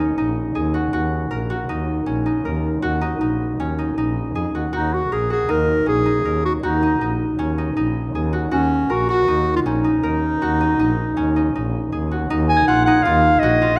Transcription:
Already playing: C#4 F#4 A#4
0.00 D#4
0.17 A#1 D#4
0.55 D#2 G#4
0.74 F#4
0.93 D#2 F#4
1.31 A#1 A#4
1.50 F#4
1.69 D#2 D#4
2.06 A#1 C#4
2.26 D#4
2.44 D#2 A#4
2.82 D#2 F#4
3.01 D#4
3.20 A#1 D#4
3.59 D#2 C#4
3.79 D#4
3.97 A#1 D#4
4.35 F2 G#4
4.54 D#2 F#4
4.73 D#2 D#4 F#4
4.94 F#4
5.11 A#1 G#4 A#4
5.30 F#4 G#4
5.48 D#2 D#4 A#4
5.86 A#1 C#4 G#4
6.06 D#4
6.24 D#2 A#4
6.45 F#4
6.63 D#2 D#4 F#4
6.83 D#4
7.01 A#1 D#4
7.38 D#2 C#4
7.58 D#4
7.76 A#1 D#4
8.14 D#2 G#4
8.33 F#4
8.51 D#2 C#4 F#4
8.90 A#1 F#4 A#4
9.09 F#4
9.27 D#2 D#4
9.56 F4
9.65 A#1 C#4 D#4
9.84 D#4
10.02 D#2 A#4
10.42 D#2 F#4
10.61 D#4
10.79 A#1 D#4
11.17 D#2 C#4
11.36 D#4
11.55 A#1 D#4
11.92 D#2 G#4
12.11 F#4
12.30 D#2 D#4
12.49 G#5
12.57 G#6
12.68 A#1 F4 F#5
12.85 D#4 F#5
13.03 D#2 F4 F5
13.40 A#1 F#4 D#5
13.62 F4

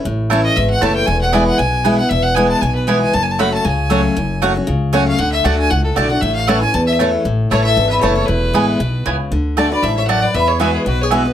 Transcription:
0.05 A1 A2
0.30 E3 A3 C#4 E4 C#5 A5
0.44 D#5
0.56 G#1 E2 E5
0.70 F#5
0.81 F#1 E3 A3 C#4 E4 C#5 A5
0.96 G5
1.06 E1 E2 G#5
1.21 F#5
1.32 E3 G#3 B3 E4 B4 D5 G#5
1.47 F#5
1.58 B1 B2 G#5
1.84 E3 G#3 B3 E4 B4 G#5
1.98 B3 F#5
2.09 E1 E2 E5
2.23 F#5
2.35 E3 G#3 B3 E4 B4 G#5
2.49 A5
2.61 B1 B2 G#5
2.75 B4
2.87 E3 G#3 B3 E4 B4 E5 G#5
3.01 G#5
3.13 F#1 F#2 A5
3.23 G#5
3.31 A5
3.39 F#3 A3 C#4 F#4 C#5 F#5 B5
3.54 A5
3.65 C#2 C#3 G#5
3.90 F#3 A3 C#4 F#4 C#5 F#5
4.17 F#1 F#2
4.42 F#3 A3 C#4 F#4 C#5 F#5
4.56 C#4 F#4
4.67 C#2 C#3
4.93 F#3 A3 C#4 F#4 C#5 F#5 G#5
5.08 F5
5.18 D2 D3 F#5
5.32 E5
5.44 D2 D3 A3 D4 F#4 D5 F#5 A5
5.58 G#5
5.70 C#2 A2 F#5
5.84 A4
5.96 B1 D3 A3 D4 F#4 D5 A5
6.10 D4 F#4 F#5
6.21 A1 A2 E5
6.35 F5
6.47 E3 A3 C#4 E4 C#5 F#5 A5
6.61 C#4 E4 G#5
6.74 E2 A5
6.87 E5
6.99 E3 A3 C#4 E4 C#5 A5
7.25 A1 A2
7.51 A1 E3 A3 C#4 E4 A4 C#5 A5
7.64 A4 E5
7.77 G#1 E2
7.89 B4 E5
8.01 F#1 E3 A3 C#4 E4 A4 C#5 A5
8.15 A4 C#5
8.26 E1 E2 E4 B4
8.54 A1 E3 G#3 B3 E4 B4 G#5
8.80 B1 B2
9.06 C#2 C#3 B3 E4 B4 G#5
9.31 D2 D3
9.57 D3 A3 D4 F#4 A4 D5 A5
9.71 D4 F#4 B4 D5
9.82 A1 G#2 A4 E5
9.97 C#5 E5
10.07 F#2 A3 F#4 D5 F#5 A5
10.22 B4 D5
10.34 E2 B4 E5
10.48 G#4 C#5
10.60 E3 G#3 B3 F#4 B4 E5 G#5
10.75 E4 G#4
10.86 B1 B2 F#4 B4
11.01 G#4 C#5
11.10 E3 G#3 B3 F#4 B4 E5 G#5
11.25 B3 F#4

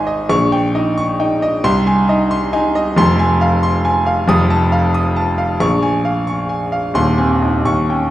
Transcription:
Already playing: G#1 D#4 D#5 G#5 C6
0.07 D#5
0.29 A#1 C#6
0.52 G5
0.75 D#4 D#5
0.98 C#6
1.20 D#4 G5
1.42 D#5
1.64 C2 C6
1.87 G#5
2.09 D#4 D#5
2.31 C6
2.53 D#4 G#5
2.75 D#5
2.96 F1 F2 C6
3.19 G#5
3.41 F5
3.63 C6
3.85 G#5
4.06 F5
4.28 F1 F2 D#6
4.50 A5
4.72 F5
4.94 D#6
5.16 A5
5.38 F5
5.60 A#1 C#6
5.83 G#5
6.05 F5
6.27 C#6
6.49 G#5
6.72 F5
6.94 D#1 D#2 C6
7.18 C4 G#5
7.42 D#4 D#5
7.65 D#2 C#6
7.90 C#4 G5

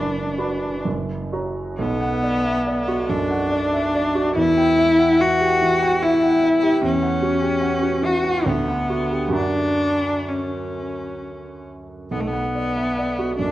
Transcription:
Already playing: F#1 F#2 D4 F#4 B4 B5
0.38 F#4 B4 B5
0.85 F#1 F#2
1.33 F#4 C#5 A#5
1.78 B1 B3
2.01 F#5
2.23 D5
2.44 E5
2.67 D5
2.88 F#4
3.09 F#2 D4
3.30 F#5
3.52 D5
3.73 E5
3.95 D5
4.15 F#4
4.36 E2 E4
4.58 G5
4.79 E5
4.99 F#5
5.19 F#4 E5
5.41 G4
5.62 E3
5.82 G5
6.02 E4 E5
6.23 F#5
6.44 E5
6.63 G4
6.83 E2 C#4
7.03 F#5
7.22 F#4
7.42 G4
7.62 F#5
7.82 F#4
8.02 E3 F#4
8.24 F#5
8.46 D2 B3
8.68 F#5
8.90 F#4
9.11 G4
9.29 F#2 F#4 F#5 A#5
9.35 D4
10.28 C#4
12.11 B1 B3
12.20 A3
12.27 B3
12.33 F#5
12.55 D5
12.76 E5
12.98 D5
13.19 F#4
13.38 F#2 D4

